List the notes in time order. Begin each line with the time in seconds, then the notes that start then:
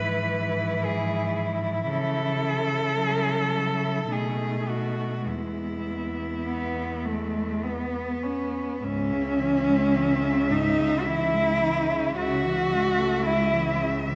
Already playing: G#2 E3 E4 B4
0.84 G#4
1.90 C#3 A4
2.99 F#3
4.10 B2 A3 D#4 G#4
4.69 F#4
5.26 E2 G#3 B3 E4
6.46 B3
7.05 G#3 A3
7.63 B3
8.23 C#4
8.82 C#2 G#2 C#4 E5
9.12 C#3
9.40 E3
9.69 G#3
9.95 E3
10.24 C#3
10.51 G#2 D#4
10.79 C#3
10.99 F#4
11.06 E3 E4
11.33 G#3
11.61 E3
11.89 C#3
12.16 C#2 C#3 F#4 E5
12.43 E3
12.72 G#3
12.98 A3
13.26 G#3 E4
13.54 E3
13.81 C#3
14.08 E3